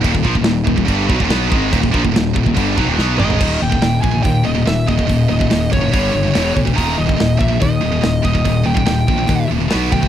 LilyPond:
<<
  \new Staff \with { instrumentName = "Lead electric guitar" } { \time 4/4 \tempo 4 = 143 r1 | r2. r8 ees''8~ | ees''8 g''4 aes''8 g''8 ees''8 fes''8 ees''8~ | ees''8 ees''4 des''2 r8 |
bes''8 ees''4 fes''8 ees''4. ees''8~ | ees''8 g''8 g''4. r4 g''8 | }
  \new Staff \with { instrumentName = "Distorted electric guitar" } { \clef bass \time 4/4 <ees, bes,>16 <ees, bes,>16 <bes, f>16 <ees, bes,>16 <ees, bes,>8 <ees, bes,>16 <ees, bes,>16 <g, d g>8 <ces ges>16 <ees, bes,>16 <ces ges ces'>8 <aes, ees aes>8 | <ees, bes,>16 <ees, bes,>16 <bes, f>16 <ees, bes,>16 <ees, bes,>8 <ees, bes,>16 <ees, bes,>16 <g, d g>8 <ces ges>16 <ees, bes,>16 <ces ges ces'>8 <aes, ees aes>8 | <ees, bes, ees>8 <ees, bes,>16 <ees, bes,>16 <ees, bes,>8 <ees, bes,>16 <ees, bes,>16 <ees, bes,>8 <ees, bes,>16 <ees, bes,>16 <ees, bes,>8 <ees, bes,>16 <ees, bes,>16 | <ees, bes,>8 <ees, bes,>16 <ees, bes,>16 <ees, bes,>8 <ees, bes,>16 <ees, bes,>16 <g, d g>8 <g, d>16 <g, d>16 <e, b, e>8 <e, b,>16 <e, b,>16 |
<ees, bes, ees>8 <ees, bes,>16 <ees, bes,>16 <ees, bes,>8 <ees, bes,>16 <ees, bes,>16 <ees, bes,>8 <ees, bes,>16 <ees, bes,>16 <ees, bes,>8 <ees, bes,>16 <ees, bes,>16 | <ees, bes,>8 <ees, bes,>16 <ees, bes,>16 <ees, bes,>8 <ees, bes,>16 <ees, bes,>16 <ees, bes,>8 <ees, bes,>16 <ees, bes,>16 <b, fis b>8 <b, fis>16 <b, fis>16 | }
  \new Staff \with { instrumentName = "Distorted electric guitar" } { \clef bass \time 4/4 <ees, bes,>16 <ees, bes,>16 <bes, f>16 <ees, bes,>16 <ees, bes,>8 <ees, bes,>16 <ees, bes,>16 <g, d g>8 <ces ges>16 <ees, bes,>16 <ces ges ces'>8 <aes, ees aes>8 | <ees, bes,>16 <ees, bes,>16 <bes, f>16 <ees, bes,>16 <ees, bes,>8 <ees, bes,>16 <ees, bes,>16 <g, d g>8 <ces ges>16 <ees, bes,>16 <ces ges ces'>8 <aes, ees aes>8 | <ees, bes, ees>8 <ees, bes,>16 <ees, bes,>16 <ees, bes,>8 <ees, bes,>16 <ees, bes,>16 <ees, bes,>8 <ees, bes,>16 <ees, bes,>16 <ees, bes,>8 <ees, bes,>16 <ees, bes,>16 | <ees, bes,>8 <ees, bes,>16 <ees, bes,>16 <ees, bes,>8 <ees, bes,>16 <ees, bes,>16 <g, d g>8 <g, d>16 <g, d>16 <e, b, e>8 <e, b,>16 <e, b,>16 |
<ees, bes, ees>8 <ees, bes,>16 <ees, bes,>16 <ees, bes,>8 <ees, bes,>16 <ees, bes,>16 <ees, bes,>8 <ees, bes,>16 <ees, bes,>16 <ees, bes,>8 <ees, bes,>16 <ees, bes,>16 | <ees, bes,>8 <ees, bes,>16 <ees, bes,>16 <ees, bes,>8 <ees, bes,>16 <ees, bes,>16 <ees, bes,>8 <ees, bes,>16 <ees, bes,>16 <b, fis b>8 <b, fis>16 <b, fis>16 | }
  \new Staff \with { instrumentName = "Distorted electric guitar" } { \clef bass \time 4/4 <ees, bes,>16 <ees, bes,>16 <bes, f>16 <ees, bes,>16 <ees, bes,>8 <ees, bes,>16 <ees, bes,>16 <g, d g>8 <ces ges>16 <ees, bes,>16 <ces ges ces'>8 <aes, ees aes>8 | <ees, bes,>16 <ees, bes,>16 <bes, f>16 <ees, bes,>16 <ees, bes,>8 <ees, bes,>16 <ees, bes,>16 <g, d g>8 <ces ges>16 <ees, bes,>16 <ces ges ces'>8 <aes, ees aes>8 | r1 | r1 |
r1 | r1 | }
  \new Staff \with { instrumentName = "Picked electric bass" } { \clef bass \time 4/4 ees,,16 ees,,16 bes,,16 ees,,16 ees,,8 ees,,16 ees,,16 g,,8 ces,16 ees,,16 ces,8 aes,,8 | ees,,16 ees,,16 bes,,16 ees,,16 ees,,8 ees,,16 ees,,16 g,,8 ces,16 ees,,16 ces,8 aes,,8 | ees,,8 ees,,8 ees,,8 bes,,8 ees,8 ees,,8 ees,,8 ees,,8 | ees,,8 ees,,8 ees,,8 ges,,8 g,,8 g,,8 e,,8 d,8 |
ees,,8 ees,,8 ees,,8 bes,,8 ees,8 ees,,8 ees,,8 ees,,8 | ees,,8 ees,,8 ees,,8 bes,,8 ees,8 ees,,8 b,,8 d,8 | }
  \new DrumStaff \with { instrumentName = "Drums" } \drummode { \time 4/4 <cymc bd>16 bd16 bd16 bd16 <cymc sn>8 bd16 bd16 <cymc bd>8 bd16 bd16 <cymc sn>8 bd8 | <cymc bd>16 bd16 bd16 bd16 <cymc sn>8 bd16 bd16 <cymc bd>8 bd8 sn8 toml16 tomfh16 | <cymc bd>8. bd16 <hho sn>8 bd8 <hho bd>4 <hho sn>8 bd16 bd16 | <hho bd>8. bd16 <hho sn>8 bd8 <hho bd>4 <hho sn>8 bd16 bd16 |
<hho bd>8. bd16 <hho sn>8 bd8 <hho bd>4 <hho sn>8 bd16 bd16 | <hho bd>8. bd16 <hho sn>8 bd8 <hho bd>4 <hho sn>8 bd16 bd16 | }
>>